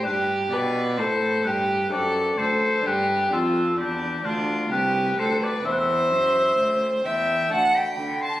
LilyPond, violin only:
\new Staff \with { instrumentName = "Violin" } { \time 3/4 \key g \mixolydian \tempo 4 = 64 g'8 b'8 a'8 g'8 a'8 a'8 | g'8 f'8 d'8 d'8 g'8 a'16 b'16 | \key c \lydian c''4. e''8 fis''16 g''8 a''16 | }